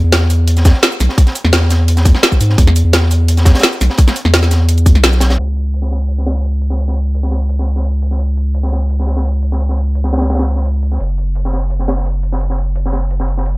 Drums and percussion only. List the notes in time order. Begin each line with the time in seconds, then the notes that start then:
0.12 snare, closed hi-hat
0.21 snare
0.30 closed hi-hat, shaker
0.47 closed hi-hat
0.57 snare, closed hi-hat, shaker
0.65 kick, snare, closed hi-hat, shaker
0.74 snare
0.83 snare, closed hi-hat
0.92 shaker
1.00 snare, closed hi-hat, shaker
1.09 snare
1.18 kick, closed hi-hat
1.27 snare, closed hi-hat
1.35 closed hi-hat, shaker
1.45 snare
1.53 snare, closed hi-hat
1.62 snare
1.70 snare, closed hi-hat, shaker
1.88 closed hi-hat
1.97 snare, closed hi-hat, shaker
2.05 kick, closed hi-hat, shaker
2.15 snare
2.23 snare, closed hi-hat
2.32 kick, shaker
2.41 closed hi-hat, shaker
2.50 snare
2.58 kick, closed hi-hat
2.67 snare, closed hi-hat
2.76 closed hi-hat, shaker
2.93 snare, closed hi-hat
3.03 snare
3.11 closed hi-hat, shaker
3.28 closed hi-hat
3.37 snare, closed hi-hat, shaker
3.45 kick, snare, closed hi-hat, shaker
3.55 snare, closed hi-hat
3.59 snare, closed hi-hat
3.63 snare, closed hi-hat
3.73 shaker
3.81 snare, closed hi-hat, shaker
3.90 snare
3.98 kick, closed hi-hat
4.08 snare, closed hi-hat, shaker
4.16 closed hi-hat, shaker
4.25 snare
4.34 snare, closed hi-hat
4.43 snare, shaker
4.51 snare, closed hi-hat, shaker
4.69 closed hi-hat
4.78 closed hi-hat, shaker
4.86 kick, closed hi-hat, shaker
4.95 snare, closed hi-hat
5.03 snare, closed hi-hat
5.13 snare, shaker
5.20 snare, closed hi-hat, shaker
5.30 snare, closed hi-hat
5.39 closed hi-hat, crash
5.56 closed hi-hat
5.74 closed hi-hat
5.82 snare
5.91 snare, closed hi-hat
6.08 closed hi-hat
6.18 snare, closed hi-hat
6.26 snare, closed hi-hat
6.35 snare
6.44 closed hi-hat
6.61 closed hi-hat
6.70 snare
6.79 closed hi-hat
6.88 snare, closed hi-hat
6.96 closed hi-hat
7.14 closed hi-hat
7.23 snare
7.31 snare, closed hi-hat
7.49 closed hi-hat
7.58 snare, closed hi-hat
7.67 closed hi-hat
7.76 snare
7.85 closed hi-hat
8.02 closed hi-hat
8.11 snare
8.19 closed hi-hat
8.29 closed hi-hat
8.37 closed hi-hat
8.54 closed hi-hat
8.63 snare
8.72 snare, closed hi-hat
8.90 closed hi-hat
8.99 snare, closed hi-hat
9.07 snare, closed hi-hat
9.17 snare
9.25 closed hi-hat
9.42 closed hi-hat
9.52 snare
9.60 closed hi-hat
9.69 snare, closed hi-hat
9.78 closed hi-hat
9.95 closed hi-hat
10.04 snare
10.13 snare, closed hi-hat
10.17 snare, closed hi-hat
10.22 snare, closed hi-hat
10.30 snare, closed hi-hat
10.34 snare, closed hi-hat
10.39 snare, closed hi-hat
10.48 closed hi-hat
10.56 snare, closed hi-hat
10.65 closed hi-hat
10.82 closed hi-hat
10.92 snare
11.00 closed hi-hat
11.09 closed hi-hat
11.18 closed hi-hat
11.35 closed hi-hat
11.45 snare
11.53 snare, closed hi-hat
11.70 closed hi-hat
11.79 snare, closed hi-hat
11.88 snare, closed hi-hat
11.98 snare
12.05 closed hi-hat
12.23 closed hi-hat
12.32 snare
12.41 closed hi-hat
12.50 snare, closed hi-hat
12.58 closed hi-hat
12.75 closed hi-hat
12.86 snare
12.93 snare, closed hi-hat
13.11 closed hi-hat
13.20 snare, closed hi-hat
13.28 closed hi-hat
13.37 snare
13.46 closed hi-hat